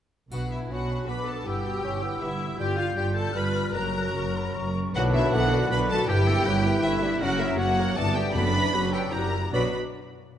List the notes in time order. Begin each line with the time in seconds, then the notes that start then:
0.31 B1 B2 B3 D4 F#4 F#5, triangle
0.51 B3 E4 E5
0.70 B1 B2 C#4 D4 F#4 F#5 B5
0.90 B4
1.08 B1 B2 B3 D4 B4 B5 D6
1.27 B3 A4 A5
1.45 G1 G2 B3 E4 G4 G5 E6
1.64 B3 F#4
1.83 G1 G2 C#4 E4 E6
2.03 B3 B4
2.21 G1 G2 B3 E4 G4 E5
2.41 B3
2.59 G1 G2 G3 F4 G4 G5 G6
2.77 B3 F4 F5
2.96 G1 G2 G3 F4 G4 G5
3.15 A4 B4 A5
3.34 G1 G2 G3 F4 B4 B5 F6
3.55 B3
3.73 F#1 F#2 F#3 F#4 A#4 A#5 F#6
3.95 F#3
4.15 F#1 F#2 F#4 C#6
4.36 C#5 B5
4.56 F#1 F#2 F#4 C#6
4.77 F#3
4.95 B1 B2 F#3 D4 F#4 B4 F#5, tam-tam
5.14 F#3 B3 E4 F#4 E5
5.33 B1 B2 E3 F#3 D4 F#4 A4 F#5
5.53 D3 B3 F#4 D5
5.70 B1 B2 F#3 D4 F#4 B4 B5
5.89 F#3 B3 F#4 A4 A5
6.08 G1 G2 E3 G3 E4 G4 G5
6.27 B3 G4 A4
6.46 G1 G2 F#3 G3 E4 B4
6.65 E3 B3 G4
6.83 G1 G2 G3 A3 E4 E5
7.03 G3 B3 G4
7.21 F#1 F#2 F#3 C#4 F#4 A#4 F#5
7.39 A#3 C#4 E4 A#4 E5
7.57 F#1 F#2 A#3 C#4 F#4 C#5 F#5
7.78 A#3 A#4 C#5
7.96 G1 G2 E3 B3 D4 E4 F#4 A4 D5 A5
8.15 B3 F#4 G4 D5 G5
8.34 F#1 F#2 D3 B3 D4 F#4 B4 B5
8.54 E3 B3 D4 B4
8.72 F#1 F#2 F#3 B3 D4 F#4 B4
8.92 D4 G4 A4 B4 G5
9.11 F#1 F#2 G3 E4 F#4 G4 A#4 A#5
9.32 E4 F#4 G4 E5
9.50 B1 B2 F#3 B3 D4 F#4 B4 D5 B5
9.55 D5 F#5